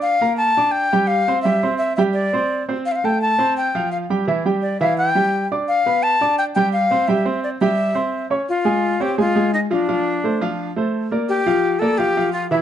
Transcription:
<<
  \new Staff \with { instrumentName = "Flute" } { \time 4/4 \key f \major \tempo 4 = 171 f''4 a''4 g''4 f''4 | e''4 e''8 e''8 d''4. r8 | f''32 e''32 f''16 g''8 a''4 g''4 f''8 r8 | r4 d''8 f''8 g''4. r8 |
f''4 a''4 g''8 g''8 f''4 | e''4 d''8 e''2 r8 | f'4. g'8 f'4 ees'8 d'8~ | d'2~ d'8 r4. |
g'4. a'8 g'4 f'8 e'8 | }
  \new Staff \with { instrumentName = "Grand piano" } { \time 4/4 \key f \major <d' d'' d'''>8 <bes bes' bes''>4 <d' d'' d'''>4 <g g' g''>4 <c' c'' c'''>8 | <g g' g''>8 <c' c'' c'''>4 <g g' g''>4 <c' c'' c'''>4 <c' c'' c'''>8~ | <c' c'' c'''>8 <a a' a''>4 <c' c'' c'''>4 <f f' f''>4 <g g' g''>8 | <e e' e''>8 <g g' g''>4 <e e' e''>4 <g g' g''>4 <d' d'' d'''>8~ |
<d' d'' d'''>8 <b b' b''>4 <d' d'' d'''>4 <g g' g''>4 <c' c'' c'''>8 | <g g' g''>8 <c' c'' c'''>4 <g g' g''>4 <c' c'' c'''>4 <des' des'' des'''>8 | r8 <aes aes' aes''>4 <c' c'' des''>8 <aes aes' aes''>8 <aes aes' aes''>4 <f f' f''>8 | <f f' f''>4 <a a' c''>8 <f f' f''>4 <a a' c''>4 <bes bes' d''>8~ |
<bes bes' d''>8 <f f' f''>4 <bes bes' d''>8 <f f' f''>8 <f f' f''>4 <e e' e''>8 | }
>>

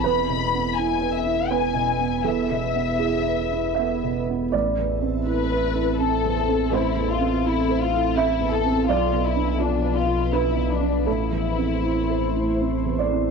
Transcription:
<<
  \new Staff \with { instrumentName = "Violin section" } { \time 3/4 \key a \minor \tempo 4 = 81 b''4 gis''8 e''8 gis''4 | e''2~ e''8 r8 | r4 b'4 a'4 | e'8 f'8 e'8 f'8 e'8 a'8 |
f'8 e'8 d'8 f'8 e'8 d'8 | e'2~ e'8 r8 | }
  \new Staff \with { instrumentName = "Ambient pad" } { \time 3/4 \key a \minor <b e' b'>2.~ | <b e' b'>2. | <c' a' e''>2.~ | <c' a' e''>2. |
<f b b'>2. | <a e' c''>2. | }
  \new Staff \with { instrumentName = "Felt piano" } { \time 3/4 \key a \minor << { b'2 b'4 | a'4 gis'4 e''4 | d''2. | c''2 e''4 |
d''2 b'4 | a'2~ a'8 d''8 | } \\ { \tuplet 3/2 { e,8 b,8 b8 e'8 b'8 e'8 b8 b,8 b8 } | \tuplet 3/2 { e,8 b,8 b8 e'8 b'8 e'8 b8 b,8 b8 } | \tuplet 3/2 { a,,8 e,8 c'8 e'8 b'8 e'8 c'8 e,8 c'8 } | \tuplet 3/2 { a,,8 e,8 c'8 e'8 c''8 e'8 c'8 e,8 c'8 } |
\tuplet 3/2 { b,,8 b,8 d'8 f'8 b'8 f'8 d'8 b,8 d'8 } | \tuplet 3/2 { a,,8 e,8 c'8 e'8 c''8 e'8 c'8 e,8 c'8 } | } >> }
  \new Staff \with { instrumentName = "Sub bass" } { \clef bass \time 3/4 \key a \minor e,,2.~ | e,,2. | a,,2.~ | a,,2. |
b,,2. | a,,2. | }
>>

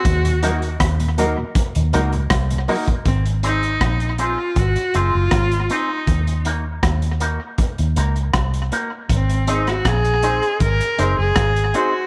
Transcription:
<<
  \new Staff \with { instrumentName = "Upright piano" } { \time 4/4 \key aes \mixolydian \tempo 4 = 80 r8 <ees' ges' bes' ees''>16 r8. <ees' ges' bes' ees''>16 r8 <bes' ees''>16 <ees' ges' bes' ees''>16 r8. <ees' ges' bes' ees''>16 r16 | r1 | r1 | r8 <ees' aes' c'' ees''>16 r8. <ees' aes' c'' ees''>16 r8. <ees' aes' c'' ees''>16 r8. <ees' aes' c'' ees''>16 r16 | }
  \new Staff \with { instrumentName = "Viola" } { \time 4/4 \key aes \mixolydian ges'4 r2. | c'8 ees'4 f'8 ges'8 f'4 ees'8~ | ees'8 r2. r8 | c'8 ees'16 ges'16 aes'4 bes'8. aes'8. ges'8 | }
  \new Staff \with { instrumentName = "Clean electric guitar" } { \time 4/4 \key aes \mixolydian r8 <bes ees' ges' bes'>8 r8 <bes ees' ges' bes'>8 r8 <bes ees' ges' bes'>8 r8 <bes ees' ges' bes'>8 | r8 <c' ees' aes' c''>8 r8 <c' ees' aes' c''>8 r8 <c' ees' aes' c''>8 r8 <c' ees' aes' c''>8 | r8 <bes ees' ges' bes'>8 r8 <bes ees' ges' bes'>8 r8 <bes ees' ges' bes'>8 r8 <bes ees' ges' bes'>8 | r8 <c' ees' aes' c''>8 r8 <c' ees' aes' c''>8 r8 <c' ees' aes' c''>8 r8 <c' ees' aes' c''>8 | }
  \new Staff \with { instrumentName = "Tonewheel organ" } { \clef bass \time 4/4 \key aes \mixolydian << { r8 <ges bes ees'>8 r8 <ges bes ees'>8 r8 <ges bes ees'>8 r8 <ges bes ees'>8 | r1 | r1 | r1 | } \\ { r16 <ees, bes,>16 r8. <ees, bes,>16 r16 <ees, bes,>16 r16 <ees, bes,>16 r16 <ees, bes,>16 r16 <ees, bes,>16 r16 <ees, bes,>16 | r1 | r1 | r1 | } >> }
  \new Staff \with { instrumentName = "Fingered electric bass" } { \clef bass \time 4/4 \key aes \mixolydian ees,4 ees,8. r8 ees,16 des,8 c,8 r8 | aes,,4 bes,,8. r16 aes,,16 r16 ges,,16 ges,,16 aes,,8 r8 | ees,4 ees,8. r8 ees,16 des,8 c,8 r8 | aes,,4 bes,,8. r16 aes,,16 r16 ges,,16 ges,,16 aes,,8 r8 | }
  \new DrumStaff \with { instrumentName = "Drums" } \drummode { \time 4/4 <hh bd>16 hh16 hh16 hh16 <hh bd ss>16 hh16 hh8 <hh bd>16 hh16 hh16 hh16 <hh bd ss>16 hh16 hho16 <hh bd>16 | <hh bd>16 hh16 hh16 hh16 <hh bd ss>16 hh16 hh8 <hh bd>16 hh16 hh8 <hh bd ss>16 hh16 hh8 | <hh bd>16 hh16 hh8 <hh bd ss>16 hh16 hh8 <hh bd>16 hh16 hh16 hh16 <hh bd ss>16 hh16 hh8 | <hh bd>16 hh16 hh16 <hh ss>16 <hh bd ss>16 hh16 hh16 hh16 <hh bd>16 hh16 hh8 <hh bd ss>16 hh16 hh8 | }
>>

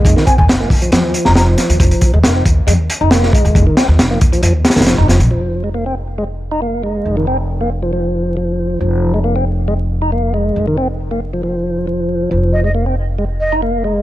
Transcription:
<<
  \new Staff \with { instrumentName = "Flute" } { \time 4/4 \key f \minor \tempo 4 = 137 r8 aes''16 aes''16 r4. r16 bes''16 bes''16 r8. | r1 | r1 | r1 |
r1 | r1 | r1 | r8 ees''16 ees''16 r4. ees''16 r4 r16 | }
  \new Staff \with { instrumentName = "Tonewheel organ" } { \clef bass \time 4/4 \key f \minor aes16 ees16 c'16 r8 bes16 r16 f16 f4 f4 | f8. aes16 bes16 c'16 r8 aes16 r8 ees'16 bes8 aes8~ | aes16 ees16 c'16 r8 bes16 r16 f16 f16 r8 ees16 f16 ees'16 f16 r16 | f8. aes16 bes16 c'16 r8 aes16 r8 ees'16 bes8 aes8~ |
aes16 ees16 c'16 r8 bes16 r16 f16 f4 f4 | f8. aes16 bes16 c'16 r8 aes16 r8 ees'16 bes8 aes8~ | aes16 ees16 c'16 r8 bes16 r16 f16 f4 f4 | f8. aes16 bes16 c'16 r8 aes16 r8 ees'16 bes8 aes8 | }
  \new Staff \with { instrumentName = "Upright bass" } { \clef bass \time 4/4 \key f \minor f,,16 r8 ees,16 f,,16 r16 ees,16 r16 f,16 ees,16 r16 f,,8. r16 ees,16 | f,,16 r8 ees,16 f,,16 r16 ees,16 r16 f,16 ees,16 r16 f,,8. r16 ees,16 | f,,16 r8 ees,16 f,,16 r16 ees,16 r16 f,16 ees,16 r16 f,,8 f,,16 f,,16 bes,,16 | r1 |
f,,1 | f,,1 | f,,1 | f,,1 | }
  \new DrumStaff \with { instrumentName = "Drums" } \drummode { \time 4/4 <hh bd>16 sn16 <hh bd>16 bd16 <hh sn>8 <hho bd>16 hh16 <hh sn>8 hh16 sn16 <hh sn>8 <hh sn>16 hh16 | <hh bd>16 hh16 <hh bd>8 <hh sn>8 <hh bd>8 hh8 hh8 <hh sn>16 sn16 <hh bd>16 hh16 | <hh bd>8 <hh sn>8 <hh sn>8 <hh bd>16 hh16 hh8 <hh sn>32 <hh sn>32 <hh sn>32 <hh sn>32 <hh sn>8 <hh sn>16 hh16 | r4 r4 r4 r4 |
r4 r4 r4 r4 | r4 r4 r4 r4 | r4 r4 r4 r4 | r4 r4 r4 r4 | }
>>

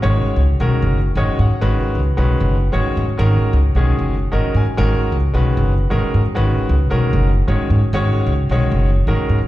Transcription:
<<
  \new Staff \with { instrumentName = "Grand piano" } { \time 7/8 \key gis \minor \tempo 4 = 133 << { r2 r8 dis''8 fis''8 | r2. r8 | r2 r8 dis''8 gis''8 | r2. r8 |
r2. r8 | r2. r8 | } \\ { <dis gis cis' fis' cis''>8. r8 <dis gis cis' fis' ais'>8. r8 <dis gis cis' fis' cis''>8. r16 | <dis gis cis' fis' b'>8. r8 <dis gis cis' fis' b'>8. r8 <dis gis cis' fis' cis''>8. r16 | <dis gis cis' fis' ais'>8. r8 <dis gis cis' fis' gis'>8. r8 <dis gis cis' fis' ais'>8. r16 | <dis gis cis' fis' ais'>8. r8 <dis gis cis' fis' b'>8. r8 <dis gis cis' fis' ais'>8. r16 |
<dis gis cis' fis' b'>8. r8 <dis gis cis' fis' ais'>8. r8 <dis gis cis' fis' cis''>8. r16 | <dis gis cis' fis' cis''>8. r8 <dis gis cis' fis' cis''>8. r8 <dis gis cis' fis' ais'>8. r16 | } >> }
  \new Staff \with { instrumentName = "Upright bass" } { \clef bass \time 7/8 \key gis \minor gis,,8 r16 cis,8 b,,16 r16 fis,,8. gis,,16 r16 gis,16 r16 | gis,,8 r16 cis,8 b,,16 r16 fis,,8. gis,,16 r16 gis,16 r16 | gis,,8 r16 cis,8 b,,16 r16 fis,,8. gis,,16 r16 gis,16 r16 | gis,,8 r16 cis,8 b,,16 r16 fis,,8. gis,,16 r16 gis,16 r16 |
gis,,8 r16 cis,8 b,,16 r16 fis,,8. gis,,16 r16 gis,16 r16 | gis,,8 r16 cis,8 b,,16 r16 fis,,8. gis,,16 r16 gis,16 r16 | }
>>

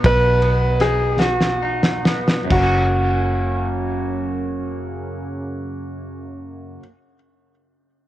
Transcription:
<<
  \new Staff \with { instrumentName = "Grand piano" } { \time 6/8 \key fis \major \tempo 4. = 43 b'4 gis'8 fis'4 r8 | fis'2.~ | fis'2. | }
  \new Staff \with { instrumentName = "Clean electric guitar" } { \time 6/8 \key fis \major <b, b dis' fis'>8 b8 dis'8 fis'8 dis'8 b8 | <fis, cis fis ais cis' fis'>2.~ | <fis, cis fis ais cis' fis'>2. | }
  \new Staff \with { instrumentName = "Fingered electric bass" } { \clef bass \time 6/8 \key fis \major b,,2. | fis,,2.~ | fis,,2. | }
  \new DrumStaff \with { instrumentName = "Drums" } \drummode { \time 6/8 <bd cymr>8 cymr8 <cymr sn>8 sn16 sn8 sn16 sn16 sn16 | <cymc bd>4. r4. | r4. r4. | }
>>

